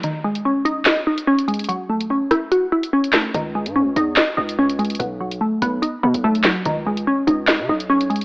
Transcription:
<<
  \new Staff \with { instrumentName = "Synth pluck" } { \time 4/4 \key cis \minor \tempo 4 = 145 dis8 gis8 cis'8 dis'8 dis''8 dis'8 cis'8 gis8 | fis8 a8 cis'8 e'8 fis'8 e'8 cis'8 a8 | dis8 gis8 cis'8 dis'8 dis''8 dis'8 cis'8 gis8 | b,8 fis8 a8 b8 dis'8 b8 a8 fis8 |
dis8 gis8 cis'8 dis'8 dis''8 dis'8 cis'8 gis8 | }
  \new Staff \with { instrumentName = "808-style bass" } { \clef bass \time 4/4 \key cis \minor r1 | r1 | cis,8. gis,16. cis,16. e,8 r8 cis,4. | b,,4 r8 b,,8 r8 b,16 b,,16 b,,8 r8 |
cis,4 r8 cis,8. cis16 b,,4 r8 | }
  \new DrumStaff \with { instrumentName = "Drums" } \drummode { \time 4/4 hh8. hh16 r8 hh8 <hc hh sn>8. hh16 r16 hh16 hh32 hh32 hh32 hh32 | hh8. hh16 r8 <hh ss>8 hh8. hh16 r16 hh16 <hc ss sn>8 | hh8. hh16 r8 hh8 <hc hh sn>8. hh16 r16 hh16 hh32 hh32 hh32 hh32 | hh8. hh16 r8 hh8 hh8. hh16 r16 hh16 <hc sn>8 |
hh8. hh16 r8 hh8 <hc hh sn>8. hh16 r16 hh16 hh32 hh32 hh16 | }
>>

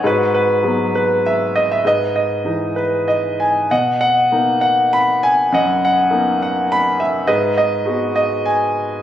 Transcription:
<<
  \new Staff \with { instrumentName = "Grand piano" } { \time 3/4 \key gis \minor \tempo 4 = 100 << { b'8 b'4 b'8 e''8 dis''16 e''16 | dis''8 dis''4 b'8 dis''8 gis''8 | fis''8 fis''4 fis''8 b''8 gis''8 | fis''8 fis''4 fis''8 b''8 e''8 |
dis''8 dis''4 dis''8 gis''4 | } \\ { fis'4. r4. | b'4. r4. | dis''4. r4. | dis''4. r4. |
b'4. r4. | } >> }
  \new Staff \with { instrumentName = "Grand piano" } { \time 3/4 \key gis \minor gis,4 <fis gis b>4 r4 | gis,4 <e gis dis'>4 r4 | b,4 <ais b dis'>4 r4 | fis,4 <ais b dis'>4 r4 |
gis,4 <gis b fis'>4 r4 | }
>>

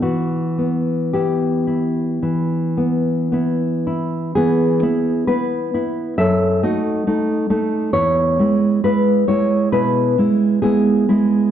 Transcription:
\new Staff \with { instrumentName = "Nylon-string guitar" } { \time 4/4 \key e \minor \tempo 4 = 66 << { fis'4 g'2~ g'8 r8 | \key e \major <b gis'>4 <e' b'>4 <a' e''>8 <fis' dis''>4. | <e' cis''>4 <e' b'>8 <e' cis''>8 <e' b'>4 <b gis'>4 | } \\ { e8 b8 <b e'>8 e'8 e8 b8 <b e'>8 e'8 | e8 <b e'>8 b8 <b e'>8 fis,8 <a dis'>8 <a dis'>8 <a dis'>8 | e,8 <gis e'>8 gis8 gis8 b,8 <gis e'>8 <gis e'>8 <gis e'>8 | } >> }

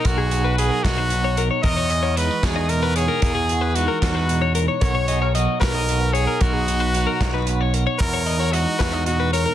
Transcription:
<<
  \new Staff \with { instrumentName = "Clean electric guitar" } { \time 6/8 \key b \major \tempo 4. = 75 ais'16 gis'8 b'8 ais'8 b'8 cis''16 ais'16 cis''16 | ais'16 cis''16 dis''16 cis''16 dis''8 b'16 dis''8 b'16 cis''16 ais'16~ | ais'16 gis'8 b'8 ais'8 b'8 cis''16 ais'16 cis''16 | ais'16 cis''16 dis''16 cis''16 dis''8 b'16 dis''8 b'16 cis''16 ais'16~ |
ais'16 gis'8 b'8 ais'8 b'8 cis''16 ais'16 cis''16 | ais'16 cis''16 dis''16 cis''16 dis''8 b'16 dis''8 b'16 cis''16 ais'16 | }
  \new Staff \with { instrumentName = "Trumpet" } { \time 6/8 \key b \major fis'4 gis'8 fis'4 r8 | dis''4 b'8 gis'8 ais'8 gis'8 | gis'4 fis'8 fis'4 r8 | cis''4 r8 ais'4 gis'8 |
fis'2 r4 | ais'4 fis'4 fis'8 ais'8 | }
  \new Staff \with { instrumentName = "Clean electric guitar" } { \time 6/8 \key b \major << { dis'8 dis'8 fis'4 dis'4 | dis'16 fis'16 gis'16 ais'16 dis'16 fis'16 dis'8 dis'16 fis'8. | fis'8 fis'8 dis'8 dis'8 dis'4 | fis'8 gis'16 ais'16 fis'4 fis'4 |
dis'8 dis'8 dis'8 dis'8 fis'4 | fis'8 dis'16 fis'16 dis'8 r8 dis'4 | } \\ { <b, fis>4 fis4 b,4 | e4 gis4 b,4 | e4 gis4 b,4 | b,4 fis4 b,4 |
b,4 fis4 b,4 | e4 gis4 b,4 | } >> }
  \new Staff \with { instrumentName = "Picked electric bass" } { \clef bass \time 6/8 \key b \major b,,4. b,,4. | e,4. e,4. | e,4. e,4. | b,,4. b,,4. |
b,,4. b,,4. | e,4. e,4. | }
  \new DrumStaff \with { instrumentName = "Drums" } \drummode { \time 6/8 <hh bd>8 hh8 hh8 <hh bd sn>8 hh8 hh8 | <hh bd>8 hh8 hh8 <hh bd sn>8 hh8 hh8 | <hh bd>8 hh8 hh8 <hh bd sn>8 hh8 hh8 | <hh bd>8 hh8 hh8 <hh bd sn>8 hh8 hh8 |
<hh bd>8 hh8 hh8 <hh bd sn>8 hh8 hh8 | <hh bd>8 hh8 hh8 <hh bd sn>8 hh8 hh8 | }
>>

